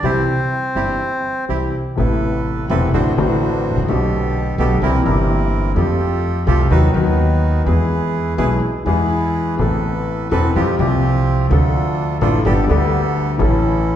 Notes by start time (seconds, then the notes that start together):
0.03 C2 C3 E3 G3 C4 E4 G4 C5
0.75 G1 G2 E3 G3 C4 E4 G4
1.48 C2 C3 E3 G3 C4 E4 G4
1.96 A1 A2 C3 A3 B3 E4 A4 B4
2.69 E1 E2 C3 A3 B3 C4 E4 A4 B4
2.93 A1 A2 D3 A3 C4 D4 F#4 C5
3.16 A1 A2 D3 A3 C4 D4 F#4 C5
3.20 F#4
3.71 G#1
3.77 A1
3.82 A#1
3.87 B1 B2 D3 A3 B3 G4 A4
3.91 G4
4.58 B1 B2 D3 A3 B3 G4 A4
4.82 C2 C3 E3 A#3 C4 E4 G4 A#4
5.04 G1 G2 E3 A#3 C4 E4 A#4
5.08 G4
5.76 F2 F3 A3 C4 F4 G4 A4
6.47 C2 C3 F3 A3 C4 F4 G4 A4
6.70 D#2 D#3 F#3 B3 D#4 F#4 B4
6.94 D#2 D#3 F#3 B3 D#4 F#4 B4
7.65 E2 E3 G#3 B3 E4 G#4 B4
8.38 B1 B2 E3 G#3 B3 E4 G#4 B4
8.85 E2 E3 G#3 B3 E4 G#4 B4
8.89 G#4
9.58 A1 A2 E3 B3 C4 A4 B4
10.31 E1 E2 E3 B3 C4 A4 B4
10.55 F2 F3 G3 C4 F4 G4
10.78 C2 C3 F3 G3 C4 F4 G4
11.49 D2 D3 F3 A3 D4 F4 A4
12.21 A1 A2 F3 A3 D4 F4 A4
12.45 G1 G2 G3 B3 D4 G4 A4
12.67 D2 D3 G3 B3 D4 G4 A4
12.71 A4
13.38 A1 A2 E3 A3 C#4 E4 A4